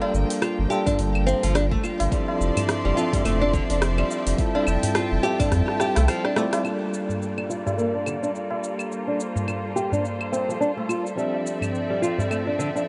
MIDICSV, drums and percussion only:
0, 0, Header, 1, 3, 480
1, 0, Start_track
1, 0, Tempo, 566038
1, 1797, Time_signature, 4, 2, 24, 8
1, 10924, End_track
2, 0, Start_track
2, 0, Title_t, "Tabla"
2, 13, Note_on_c, 9, 60, 79
2, 20, Note_on_c, 9, 63, 76
2, 98, Note_off_c, 9, 60, 0
2, 105, Note_off_c, 9, 63, 0
2, 596, Note_on_c, 9, 63, 66
2, 681, Note_off_c, 9, 63, 0
2, 728, Note_on_c, 9, 60, 54
2, 735, Note_on_c, 9, 64, 88
2, 813, Note_off_c, 9, 60, 0
2, 820, Note_off_c, 9, 64, 0
2, 1076, Note_on_c, 9, 63, 68
2, 1160, Note_off_c, 9, 63, 0
2, 1215, Note_on_c, 9, 60, 65
2, 1299, Note_off_c, 9, 60, 0
2, 1558, Note_on_c, 9, 60, 39
2, 1642, Note_off_c, 9, 60, 0
2, 1695, Note_on_c, 9, 60, 81
2, 1780, Note_off_c, 9, 60, 0
2, 1935, Note_on_c, 9, 60, 78
2, 1935, Note_on_c, 9, 63, 67
2, 2020, Note_off_c, 9, 60, 0
2, 2020, Note_off_c, 9, 63, 0
2, 2176, Note_on_c, 9, 64, 74
2, 2261, Note_off_c, 9, 64, 0
2, 2511, Note_on_c, 9, 63, 70
2, 2595, Note_off_c, 9, 63, 0
2, 2654, Note_on_c, 9, 64, 85
2, 2659, Note_on_c, 9, 60, 62
2, 2738, Note_off_c, 9, 64, 0
2, 2744, Note_off_c, 9, 60, 0
2, 3474, Note_on_c, 9, 63, 42
2, 3482, Note_on_c, 9, 60, 34
2, 3559, Note_off_c, 9, 63, 0
2, 3567, Note_off_c, 9, 60, 0
2, 3857, Note_on_c, 9, 60, 82
2, 3858, Note_on_c, 9, 63, 79
2, 3942, Note_off_c, 9, 60, 0
2, 3943, Note_off_c, 9, 63, 0
2, 4097, Note_on_c, 9, 64, 74
2, 4182, Note_off_c, 9, 64, 0
2, 4437, Note_on_c, 9, 63, 67
2, 4522, Note_off_c, 9, 63, 0
2, 4576, Note_on_c, 9, 60, 61
2, 4579, Note_on_c, 9, 64, 82
2, 4661, Note_off_c, 9, 60, 0
2, 4664, Note_off_c, 9, 64, 0
2, 4923, Note_on_c, 9, 63, 72
2, 5008, Note_off_c, 9, 63, 0
2, 5048, Note_on_c, 9, 60, 65
2, 5133, Note_off_c, 9, 60, 0
2, 5394, Note_on_c, 9, 60, 39
2, 5479, Note_off_c, 9, 60, 0
2, 5542, Note_on_c, 9, 60, 86
2, 5627, Note_off_c, 9, 60, 0
2, 5776, Note_on_c, 9, 63, 67
2, 5861, Note_off_c, 9, 63, 0
2, 6014, Note_on_c, 9, 64, 63
2, 6099, Note_off_c, 9, 64, 0
2, 6360, Note_on_c, 9, 63, 49
2, 6445, Note_off_c, 9, 63, 0
2, 6501, Note_on_c, 9, 60, 57
2, 6501, Note_on_c, 9, 64, 81
2, 6586, Note_off_c, 9, 60, 0
2, 6586, Note_off_c, 9, 64, 0
2, 6600, Note_on_c, 9, 60, 53
2, 6685, Note_off_c, 9, 60, 0
2, 6975, Note_on_c, 9, 63, 35
2, 6976, Note_on_c, 9, 60, 35
2, 7060, Note_off_c, 9, 63, 0
2, 7061, Note_off_c, 9, 60, 0
2, 7212, Note_on_c, 9, 60, 61
2, 7297, Note_off_c, 9, 60, 0
2, 7457, Note_on_c, 9, 60, 35
2, 7542, Note_off_c, 9, 60, 0
2, 7696, Note_on_c, 9, 63, 53
2, 7781, Note_off_c, 9, 63, 0
2, 7935, Note_on_c, 9, 64, 75
2, 8020, Note_off_c, 9, 64, 0
2, 8281, Note_on_c, 9, 63, 50
2, 8366, Note_off_c, 9, 63, 0
2, 8413, Note_on_c, 9, 64, 75
2, 8498, Note_off_c, 9, 64, 0
2, 8663, Note_on_c, 9, 60, 53
2, 8748, Note_off_c, 9, 60, 0
2, 8753, Note_on_c, 9, 63, 60
2, 8838, Note_off_c, 9, 63, 0
2, 8899, Note_on_c, 9, 60, 34
2, 8983, Note_off_c, 9, 60, 0
2, 9139, Note_on_c, 9, 60, 61
2, 9224, Note_off_c, 9, 60, 0
2, 9617, Note_on_c, 9, 63, 55
2, 9702, Note_off_c, 9, 63, 0
2, 9848, Note_on_c, 9, 64, 65
2, 9932, Note_off_c, 9, 64, 0
2, 10196, Note_on_c, 9, 63, 53
2, 10281, Note_off_c, 9, 63, 0
2, 10333, Note_on_c, 9, 64, 80
2, 10340, Note_on_c, 9, 60, 53
2, 10418, Note_off_c, 9, 64, 0
2, 10425, Note_off_c, 9, 60, 0
2, 10435, Note_on_c, 9, 60, 48
2, 10520, Note_off_c, 9, 60, 0
2, 10814, Note_on_c, 9, 63, 29
2, 10817, Note_on_c, 9, 60, 34
2, 10899, Note_off_c, 9, 63, 0
2, 10902, Note_off_c, 9, 60, 0
2, 10924, End_track
3, 0, Start_track
3, 0, Title_t, "Drums"
3, 124, Note_on_c, 9, 82, 79
3, 209, Note_off_c, 9, 82, 0
3, 257, Note_on_c, 9, 46, 58
3, 264, Note_on_c, 9, 82, 47
3, 342, Note_off_c, 9, 46, 0
3, 349, Note_off_c, 9, 82, 0
3, 357, Note_on_c, 9, 37, 95
3, 357, Note_on_c, 9, 46, 42
3, 357, Note_on_c, 9, 75, 87
3, 364, Note_on_c, 9, 82, 32
3, 442, Note_off_c, 9, 37, 0
3, 442, Note_off_c, 9, 46, 0
3, 442, Note_off_c, 9, 75, 0
3, 449, Note_off_c, 9, 82, 0
3, 605, Note_on_c, 9, 82, 73
3, 689, Note_off_c, 9, 82, 0
3, 734, Note_on_c, 9, 36, 105
3, 738, Note_on_c, 9, 46, 53
3, 745, Note_on_c, 9, 82, 46
3, 819, Note_off_c, 9, 36, 0
3, 822, Note_off_c, 9, 46, 0
3, 829, Note_off_c, 9, 82, 0
3, 838, Note_on_c, 9, 46, 45
3, 845, Note_on_c, 9, 82, 35
3, 923, Note_off_c, 9, 46, 0
3, 930, Note_off_c, 9, 82, 0
3, 977, Note_on_c, 9, 75, 85
3, 1062, Note_off_c, 9, 75, 0
3, 1085, Note_on_c, 9, 82, 75
3, 1170, Note_off_c, 9, 82, 0
3, 1216, Note_on_c, 9, 46, 55
3, 1223, Note_on_c, 9, 82, 43
3, 1301, Note_off_c, 9, 46, 0
3, 1308, Note_off_c, 9, 82, 0
3, 1317, Note_on_c, 9, 37, 97
3, 1317, Note_on_c, 9, 46, 47
3, 1324, Note_on_c, 9, 82, 33
3, 1402, Note_off_c, 9, 37, 0
3, 1402, Note_off_c, 9, 46, 0
3, 1409, Note_off_c, 9, 82, 0
3, 1455, Note_on_c, 9, 36, 100
3, 1539, Note_off_c, 9, 36, 0
3, 1557, Note_on_c, 9, 75, 77
3, 1564, Note_on_c, 9, 82, 75
3, 1642, Note_off_c, 9, 75, 0
3, 1649, Note_off_c, 9, 82, 0
3, 1697, Note_on_c, 9, 46, 56
3, 1704, Note_on_c, 9, 82, 44
3, 1781, Note_off_c, 9, 46, 0
3, 1788, Note_off_c, 9, 82, 0
3, 1796, Note_on_c, 9, 36, 122
3, 1799, Note_on_c, 9, 46, 46
3, 1806, Note_on_c, 9, 82, 32
3, 1880, Note_off_c, 9, 36, 0
3, 1883, Note_off_c, 9, 46, 0
3, 1890, Note_off_c, 9, 82, 0
3, 2046, Note_on_c, 9, 82, 79
3, 2131, Note_off_c, 9, 82, 0
3, 2179, Note_on_c, 9, 46, 57
3, 2179, Note_on_c, 9, 75, 83
3, 2186, Note_on_c, 9, 82, 45
3, 2264, Note_off_c, 9, 46, 0
3, 2264, Note_off_c, 9, 75, 0
3, 2271, Note_off_c, 9, 82, 0
3, 2279, Note_on_c, 9, 37, 100
3, 2279, Note_on_c, 9, 46, 45
3, 2286, Note_on_c, 9, 82, 30
3, 2364, Note_off_c, 9, 37, 0
3, 2364, Note_off_c, 9, 46, 0
3, 2371, Note_off_c, 9, 82, 0
3, 2525, Note_on_c, 9, 82, 69
3, 2609, Note_off_c, 9, 82, 0
3, 2656, Note_on_c, 9, 36, 99
3, 2659, Note_on_c, 9, 46, 59
3, 2666, Note_on_c, 9, 82, 44
3, 2741, Note_off_c, 9, 36, 0
3, 2743, Note_off_c, 9, 46, 0
3, 2750, Note_off_c, 9, 82, 0
3, 2760, Note_on_c, 9, 46, 47
3, 2760, Note_on_c, 9, 75, 84
3, 2767, Note_on_c, 9, 82, 33
3, 2845, Note_off_c, 9, 46, 0
3, 2845, Note_off_c, 9, 75, 0
3, 2852, Note_off_c, 9, 82, 0
3, 2997, Note_on_c, 9, 36, 106
3, 3005, Note_on_c, 9, 82, 76
3, 3082, Note_off_c, 9, 36, 0
3, 3090, Note_off_c, 9, 82, 0
3, 3137, Note_on_c, 9, 46, 57
3, 3144, Note_on_c, 9, 82, 42
3, 3222, Note_off_c, 9, 46, 0
3, 3229, Note_off_c, 9, 82, 0
3, 3238, Note_on_c, 9, 37, 100
3, 3238, Note_on_c, 9, 46, 47
3, 3245, Note_on_c, 9, 82, 33
3, 3323, Note_off_c, 9, 37, 0
3, 3323, Note_off_c, 9, 46, 0
3, 3330, Note_off_c, 9, 82, 0
3, 3376, Note_on_c, 9, 75, 87
3, 3461, Note_off_c, 9, 75, 0
3, 3484, Note_on_c, 9, 82, 72
3, 3569, Note_off_c, 9, 82, 0
3, 3618, Note_on_c, 9, 46, 60
3, 3625, Note_on_c, 9, 82, 41
3, 3703, Note_off_c, 9, 46, 0
3, 3710, Note_off_c, 9, 82, 0
3, 3718, Note_on_c, 9, 36, 118
3, 3718, Note_on_c, 9, 46, 48
3, 3725, Note_on_c, 9, 82, 32
3, 3802, Note_off_c, 9, 36, 0
3, 3803, Note_off_c, 9, 46, 0
3, 3810, Note_off_c, 9, 82, 0
3, 3958, Note_on_c, 9, 75, 88
3, 3965, Note_on_c, 9, 82, 79
3, 4043, Note_off_c, 9, 75, 0
3, 4050, Note_off_c, 9, 82, 0
3, 4098, Note_on_c, 9, 46, 63
3, 4105, Note_on_c, 9, 82, 45
3, 4183, Note_off_c, 9, 46, 0
3, 4190, Note_off_c, 9, 82, 0
3, 4197, Note_on_c, 9, 37, 102
3, 4197, Note_on_c, 9, 46, 45
3, 4204, Note_on_c, 9, 82, 32
3, 4282, Note_off_c, 9, 37, 0
3, 4282, Note_off_c, 9, 46, 0
3, 4289, Note_off_c, 9, 82, 0
3, 4445, Note_on_c, 9, 82, 69
3, 4530, Note_off_c, 9, 82, 0
3, 4577, Note_on_c, 9, 36, 104
3, 4579, Note_on_c, 9, 46, 62
3, 4579, Note_on_c, 9, 75, 80
3, 4586, Note_on_c, 9, 82, 44
3, 4662, Note_off_c, 9, 36, 0
3, 4664, Note_off_c, 9, 46, 0
3, 4664, Note_off_c, 9, 75, 0
3, 4671, Note_off_c, 9, 82, 0
3, 4678, Note_on_c, 9, 36, 63
3, 4679, Note_on_c, 9, 37, 65
3, 4679, Note_on_c, 9, 46, 49
3, 4686, Note_on_c, 9, 82, 33
3, 4763, Note_off_c, 9, 36, 0
3, 4764, Note_off_c, 9, 37, 0
3, 4764, Note_off_c, 9, 46, 0
3, 4771, Note_off_c, 9, 82, 0
3, 4817, Note_on_c, 9, 37, 59
3, 4902, Note_off_c, 9, 37, 0
3, 4916, Note_on_c, 9, 37, 75
3, 4923, Note_on_c, 9, 82, 79
3, 5001, Note_off_c, 9, 37, 0
3, 5008, Note_off_c, 9, 82, 0
3, 5057, Note_on_c, 9, 37, 72
3, 5057, Note_on_c, 9, 46, 58
3, 5064, Note_on_c, 9, 82, 45
3, 5142, Note_off_c, 9, 37, 0
3, 5142, Note_off_c, 9, 46, 0
3, 5149, Note_off_c, 9, 82, 0
3, 5158, Note_on_c, 9, 37, 89
3, 5158, Note_on_c, 9, 46, 50
3, 5158, Note_on_c, 9, 75, 86
3, 5165, Note_on_c, 9, 82, 32
3, 5243, Note_off_c, 9, 37, 0
3, 5243, Note_off_c, 9, 46, 0
3, 5243, Note_off_c, 9, 75, 0
3, 5250, Note_off_c, 9, 82, 0
3, 5297, Note_on_c, 9, 37, 74
3, 5382, Note_off_c, 9, 37, 0
3, 5397, Note_on_c, 9, 37, 96
3, 5404, Note_on_c, 9, 82, 72
3, 5482, Note_off_c, 9, 37, 0
3, 5489, Note_off_c, 9, 82, 0
3, 5536, Note_on_c, 9, 37, 91
3, 5536, Note_on_c, 9, 46, 60
3, 5543, Note_on_c, 9, 82, 46
3, 5621, Note_off_c, 9, 37, 0
3, 5621, Note_off_c, 9, 46, 0
3, 5627, Note_off_c, 9, 82, 0
3, 5637, Note_on_c, 9, 75, 69
3, 5644, Note_on_c, 9, 82, 29
3, 5722, Note_off_c, 9, 75, 0
3, 5728, Note_off_c, 9, 82, 0
3, 5884, Note_on_c, 9, 82, 67
3, 5968, Note_off_c, 9, 82, 0
3, 6024, Note_on_c, 9, 82, 41
3, 6109, Note_off_c, 9, 82, 0
3, 6126, Note_on_c, 9, 82, 28
3, 6211, Note_off_c, 9, 82, 0
3, 6257, Note_on_c, 9, 75, 73
3, 6342, Note_off_c, 9, 75, 0
3, 6365, Note_on_c, 9, 82, 65
3, 6449, Note_off_c, 9, 82, 0
3, 6504, Note_on_c, 9, 82, 37
3, 6589, Note_off_c, 9, 82, 0
3, 6604, Note_on_c, 9, 82, 31
3, 6689, Note_off_c, 9, 82, 0
3, 6838, Note_on_c, 9, 75, 66
3, 6845, Note_on_c, 9, 82, 66
3, 6923, Note_off_c, 9, 75, 0
3, 6930, Note_off_c, 9, 82, 0
3, 6984, Note_on_c, 9, 82, 38
3, 7069, Note_off_c, 9, 82, 0
3, 7084, Note_on_c, 9, 82, 28
3, 7168, Note_off_c, 9, 82, 0
3, 7324, Note_on_c, 9, 82, 66
3, 7409, Note_off_c, 9, 82, 0
3, 7455, Note_on_c, 9, 75, 70
3, 7462, Note_on_c, 9, 82, 41
3, 7540, Note_off_c, 9, 75, 0
3, 7547, Note_off_c, 9, 82, 0
3, 7565, Note_on_c, 9, 82, 31
3, 7650, Note_off_c, 9, 82, 0
3, 7804, Note_on_c, 9, 82, 67
3, 7888, Note_off_c, 9, 82, 0
3, 7944, Note_on_c, 9, 82, 40
3, 8029, Note_off_c, 9, 82, 0
3, 8038, Note_on_c, 9, 75, 66
3, 8045, Note_on_c, 9, 82, 30
3, 8123, Note_off_c, 9, 75, 0
3, 8130, Note_off_c, 9, 82, 0
3, 8284, Note_on_c, 9, 82, 63
3, 8368, Note_off_c, 9, 82, 0
3, 8423, Note_on_c, 9, 82, 39
3, 8508, Note_off_c, 9, 82, 0
3, 8523, Note_on_c, 9, 82, 29
3, 8608, Note_off_c, 9, 82, 0
3, 8656, Note_on_c, 9, 75, 60
3, 8741, Note_off_c, 9, 75, 0
3, 8765, Note_on_c, 9, 82, 70
3, 8850, Note_off_c, 9, 82, 0
3, 8906, Note_on_c, 9, 82, 39
3, 8991, Note_off_c, 9, 82, 0
3, 9005, Note_on_c, 9, 82, 28
3, 9089, Note_off_c, 9, 82, 0
3, 9237, Note_on_c, 9, 75, 60
3, 9244, Note_on_c, 9, 82, 65
3, 9322, Note_off_c, 9, 75, 0
3, 9329, Note_off_c, 9, 82, 0
3, 9384, Note_on_c, 9, 82, 40
3, 9468, Note_off_c, 9, 82, 0
3, 9485, Note_on_c, 9, 82, 31
3, 9570, Note_off_c, 9, 82, 0
3, 9724, Note_on_c, 9, 82, 75
3, 9809, Note_off_c, 9, 82, 0
3, 9856, Note_on_c, 9, 75, 66
3, 9863, Note_on_c, 9, 82, 43
3, 9941, Note_off_c, 9, 75, 0
3, 9948, Note_off_c, 9, 82, 0
3, 9963, Note_on_c, 9, 82, 30
3, 10048, Note_off_c, 9, 82, 0
3, 10204, Note_on_c, 9, 82, 70
3, 10289, Note_off_c, 9, 82, 0
3, 10346, Note_on_c, 9, 82, 40
3, 10430, Note_off_c, 9, 82, 0
3, 10439, Note_on_c, 9, 75, 64
3, 10446, Note_on_c, 9, 82, 31
3, 10524, Note_off_c, 9, 75, 0
3, 10531, Note_off_c, 9, 82, 0
3, 10685, Note_on_c, 9, 82, 70
3, 10770, Note_off_c, 9, 82, 0
3, 10825, Note_on_c, 9, 82, 41
3, 10910, Note_off_c, 9, 82, 0
3, 10924, End_track
0, 0, End_of_file